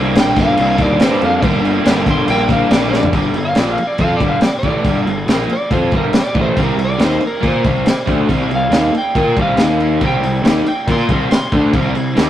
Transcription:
Already playing: C2 G2 D3 A#3 D4
0.00 G3
0.15 A#1 G2 D3 G3 A#3 D4, snare, crash
0.20 G5
0.36 G1 A#3 D4, kick, snare, crash
0.40 G3 F5
0.57 C2, crash
0.77 D#2 A#3 D4, kick, crash
0.81 G3 D5
1.00 G2 D3 G3 A#3 D4 C5, snare, crash
1.22 F2 F5, crash
1.42 G1 G2 D3 G3 A#3 D4, kick, crash
1.62 A#3 D4, crash
1.66 G3
1.84 G1 G2 D3 G3 A#3, snare, crash
1.88 D4
2.06 A#3 D4, kick, crash
2.10 G3 C6
2.28 A#1 G5, crash
2.49 G3 A#3 D4 F5, kick, crash
2.69 A#1 D3 G3 A#3 D4 D5, snare, crash
2.91 D5, snare
3.03 floor tom
3.13 G1 G2 D3 G3, kick, crash
3.34 G1 G2 D3, crash
3.45 F5
3.55 A#1 A#2 F3 A#3 D5, snare, crash
3.72 F5
3.78 muted overdriven electric guitar stroke, muted picked electric bass stroke, crash
3.87 D5
3.98 F2 F3 C4 F4 F5, kick, crash
4.17 D5, kick, crash
4.21 G1 G2 D3 G3
4.29 F5
4.41 D5, muted overdriven electric guitar stroke, muted picked electric bass stroke, snare, crash
4.59 D5
4.63 A1 A2 E3 A3, kick, crash
4.84 G1 G2 D3 G3, kick, crash
5.07 G1 G2 D3, crash
5.27 A#1 A#2 F3 A#3, snare, crash
5.49 D5, muted picked electric bass stroke, muted overdriven electric guitar stroke, crash
5.71 F2 F3 C4 F4 C5, kick, crash
5.91 G1 G2 D3 G3, kick, crash
5.97 A#4
6.13 muted picked electric bass stroke, muted overdriven electric guitar stroke, snare, crash
6.20 D5
6.35 A1 A2 E3 A3, kick, crash
6.41 C5
6.57 C2 C3 G3 C4, kick, crash
6.63 A#4
6.76 C2 C3 G3, crash
6.85 D5
6.98 D#2 D#3 A#3 D#4, snare, crash
7.06 C5
7.21 muted overdriven electric guitar stroke, muted picked electric bass stroke, crash
7.27 A#4
7.41 A#2 A#3 F4 A#4, kick, crash
7.48 C5
7.64 C2 C3 G3 C4, kick, crash
7.84 muted picked electric bass stroke, muted overdriven electric guitar stroke, snare, crash
8.06 D2 D3 A3 D4, kick, crash
8.28 C2 C3 G3 C4, kick, crash
8.49 C2 C3 G3, crash
8.55 F5
8.70 D#2 D#3 A#3 D#4, snare, crash
8.92 muted picked electric bass stroke, muted overdriven electric guitar stroke, crash
8.98 G5
9.15 A#2 A#3 F4 A#4, kick, crash
9.37 C2 C3 G3 C4, kick, crash
9.42 F5
9.57 D#2 D#3 A#3, snare, crash
9.61 D#4
9.80 crash
10.01 C2 C3 G3 C4, kick, crash
10.06 G5
10.21 C2 C3 G3, crash
10.43 D#2 D#3 A#3 D#4, snare, crash
10.64 muted picked electric bass stroke, muted overdriven electric guitar stroke, crash
10.68 G5
10.87 A#2 A#3 F4 A#4, kick, crash
10.92 C6
11.09 C2 C3 G3, kick, crash
11.13 C4
11.31 C6, muted picked electric bass stroke, muted overdriven electric guitar stroke, snare, crash
11.52 D2 D3 A3 D4, kick, crash
11.73 C2 C3 G3 C4, kick, crash
11.95 C2 C3 G3, crash
12.16 D#2 D#3 A#3 D#4, snare, crash

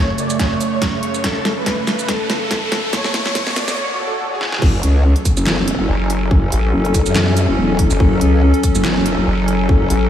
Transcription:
Already playing: F#2 C#3 A3 C#5, riser
0.18 D5, closed hi-hat, shaker
0.30 shaker
0.39 C#5, kick, snare, closed hi-hat
0.61 C#5, closed hi-hat, shaker
0.82 kick, snare, closed hi-hat
0.93 C#5
1.03 closed hi-hat
1.14 shaker
1.24 A4, kick, snare, closed hi-hat
1.45 snare, closed hi-hat
1.57 B4
1.66 kick, snare, closed hi-hat
1.87 B4, snare, closed hi-hat, shaker
1.99 shaker
2.09 A4, kick, snare, closed hi-hat
2.29 A4, snare, closed hi-hat
2.51 kick, snare, closed hi-hat
2.62 A4
2.72 snare, closed hi-hat
2.93 C#5, kick, snare, closed hi-hat
3.04 snare
3.14 snare, closed hi-hat
3.26 C#5, snare
3.35 kick, snare, closed hi-hat
3.47 snare
3.56 D5, snare, closed hi-hat, shaker
3.68 snare, shaker
3.77 C#5, swell
3.99 A4
4.31 G#4
4.41 snare
4.52 snare
4.62 F#1 F#3 C#4 A4, kick, crash
4.83 C#2, closed hi-hat
5.16 closed hi-hat
5.25 kick, closed hi-hat, shaker
5.37 F#1, shaker
5.46 snare, clap
5.68 closed hi-hat
5.79 F#1
5.89 F#1
6.10 closed hi-hat
6.31 F#1, kick
6.52 A1, closed hi-hat
6.73 F#1
6.85 closed hi-hat
6.94 kick, closed hi-hat, shaker
7.06 F#2, shaker
7.16 snare, clap
7.37 closed hi-hat, shaker
7.48 F#1
7.58 E1
7.79 kick, closed hi-hat
7.90 F#1, shaker
8.00 F#1, kick
8.21 C#2, closed hi-hat
8.54 closed hi-hat
8.63 kick, closed hi-hat, shaker
8.75 F#1, shaker
8.85 snare, clap
9.06 closed hi-hat
9.17 F#1
9.27 F#1
9.48 closed hi-hat
9.69 F#1, kick
9.90 A1, closed hi-hat

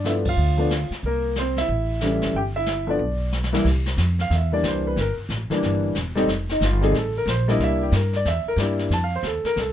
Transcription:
Already playing: G2
0.04 F3 A3 B3 D4 E4 E5, snare, hi-hat pedal
0.25 F5, kick, ride
0.29 F4
0.37 D2, brush sweep
0.58 F3 A3 B3 D4
0.70 snare, hi-hat pedal
0.90 muted upright bass stroke, snare
1.03 C2 A#3 A#4, brush sweep
1.35 C4 C5, snare, hi-hat pedal
1.57 E4 E5, snare
1.69 A1, brush sweep
2.00 E3 G3 A3 C#4, snare, hi-hat pedal
2.22 F#1, snare
2.34 G1 G5, brush sweep
2.38 G4
2.56 E4 E5
2.66 snare, hi-hat pedal
2.87 F3 A3 B3 D4 D5
2.99 B1, brush sweep
3.32 snare, hi-hat pedal
3.44 snare
3.52 C2 E3 G3 A#3 E4, snare
3.65 C2, brush sweep, kick, snare, crash
3.86 snare
3.97 F2, snare, hi-hat pedal
4.19 F5, snare
4.30 E2, brush sweep, snare
4.35 E5
4.52 E3 G3 A#3 D4 D5
4.63 C2, snare, hi-hat pedal
4.68 C5
4.87 B4
4.96 G1, brush sweep, snare
5.00 A#4
5.17 muted upright bass stroke
5.29 A1, snare, hi-hat pedal
5.50 E3 G3 A#3 D4, muted upright bass stroke, snare
5.63 G1, brush sweep, snare
5.95 E1, snare, hi-hat pedal
6.15 G3 A3 C4 D#4, snare
6.27 F1, brush sweep, snare
6.49 D#4, snare
6.61 G1 F4, snare, hi-hat pedal
6.81 G3 A3 C4 D#4 G#4, snare
6.92 A1, brush sweep, snare
6.97 A4
7.18 A#4
7.26 A#1, snare, hi-hat pedal
7.30 C5
7.48 G3 A#3 D4 E4 D#5, snare
7.59 C2, brush sweep, snare
7.64 E5
7.83 G4
7.92 G2 A#4, snare, hi-hat pedal
8.13 D5, snare
8.25 E2 E5, brush sweep, snare
8.46 A#4, muted upright bass stroke
8.56 G2 G3 A#3 D4 E4, snare, hi-hat pedal
8.79 snare
8.90 F2 A5, brush sweep, snare
9.04 F5
9.16 C5
9.23 D#2 A4, snare, hi-hat pedal
9.44 A#4, muted upright bass stroke, snare
9.56 C2 A4, brush sweep, snare

